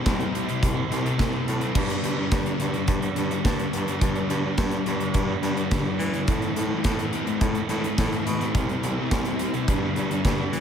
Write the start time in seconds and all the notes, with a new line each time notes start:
0.04 C2 C3 G3 C4 E4, kick, snare, closed hi-hat
0.20 closed hi-hat
0.33 C3 G3 C4 E4, closed hi-hat
0.46 G3 C4 E4, muted distorted electric guitar stroke, closed hi-hat
0.63 C2, kick, closed hi-hat
0.74 G3 C4 E4
0.90 C2 C3 G3 C4 E4, closed hi-hat
1.03 G3 C4 E4, muted distorted electric guitar stroke, closed hi-hat
1.17 C2 C3 G3 C4 E4, kick, snare, closed hi-hat
1.32 G3 C4
1.46 A2 C3 G3 C4, closed hi-hat
1.60 G3 C4 E4, closed hi-hat
1.73 G2 D3 G3 B3 D4, kick, crash
1.90 closed hi-hat
2.03 G2 D3 G3 B3 D4, closed hi-hat
2.17 D3 G3 B3 D4
2.31 G2 D3 G3 B3 D4, kick, snare, closed hi-hat
2.46 closed hi-hat
2.58 G2 D3 G3 B3 D4, closed hi-hat
2.73 G3 B3 D4, muted distorted electric guitar stroke, closed hi-hat
2.88 G2, kick, closed hi-hat
3.01 G3 B3 D4, closed hi-hat
3.15 G2 D3 G3 B3 D4, closed hi-hat
3.30 G3 B3 D4, muted distorted electric guitar stroke, closed hi-hat
3.43 G2 D3 G3 B3 D4, kick, snare, closed hi-hat
3.58 D3 G3, closed hi-hat
3.72 G2 D3 G3, closed hi-hat
3.86 D3 G3 B3 D4, closed hi-hat
4.00 G2 D3 G3 B3 D4, kick, closed hi-hat
4.15 closed hi-hat
4.28 G2 D3 G3 B3 D4, closed hi-hat
4.42 G3 B3 D4
4.46 D3
4.56 G2 D3 G3 B3 D4, kick, snare, closed hi-hat
4.71 closed hi-hat
4.85 G2 D3 G3 B3 D4, closed hi-hat
4.98 G3 B3 D4, muted distorted electric guitar stroke, closed hi-hat
5.14 G2, kick, closed hi-hat
5.28 G3 B3 D4
5.41 G2 D3 G3 B3 D4, closed hi-hat
5.56 G3 B3 D4, muted distorted electric guitar stroke, closed hi-hat
5.70 G2 D3 G3 B3 D4, kick, snare, closed hi-hat
5.85 D3 G3
5.99 G2 D3 E3 G3, snare, closed hi-hat
6.13 D3 G3 B3 D4, closed hi-hat
6.27 A2 E3 A3 C4 E4, kick, closed hi-hat
6.42 closed hi-hat
6.56 A2 E3 A3 C4 E4, closed hi-hat
6.69 E3 A3 C4 E4
6.74 A3
6.84 A2 E3 A3 C4 E4, kick, snare, closed hi-hat
6.99 closed hi-hat
7.12 A2 E3 A3 C4 E4, closed hi-hat
7.25 A3 C4 E4, muted distorted electric guitar stroke, closed hi-hat
7.41 A2, kick, closed hi-hat
7.55 A3 C4 E4, closed hi-hat
7.69 A2 E3 A3 C4 E4, closed hi-hat
7.83 A3 C4 E4, muted distorted electric guitar stroke, closed hi-hat
7.97 A2 E3 A3 C4 E4, kick, snare, closed hi-hat
8.12 E3 A3, closed hi-hat
8.25 A2 B2 E3 A3, closed hi-hat
8.40 E3 A3 C4 E4, closed hi-hat
8.54 C2 C3 G3 C4 E4, kick, closed hi-hat
8.69 closed hi-hat
8.82 C2 C3 G3 C4 E4, closed hi-hat
8.97 G3 C4 E4
9.10 C2 C3 G3 C4 E4, kick, snare, closed hi-hat
9.25 closed hi-hat
9.38 C2 C3 G3 C4 E4, closed hi-hat
9.53 G3 C4 E4, muted distorted electric guitar stroke, closed hi-hat
9.67 G2 D3 G3 B3 D4, kick, closed hi-hat
9.83 G3 B3 D4
9.95 G2 D3 G3 B3, closed hi-hat
9.99 D4
10.10 G3 B3 D4, muted distorted electric guitar stroke, closed hi-hat
10.25 G2 D3 G3 B3 D4, kick, snare, closed hi-hat
10.38 D3 G3
10.52 G2 D3 E3 G3, closed hi-hat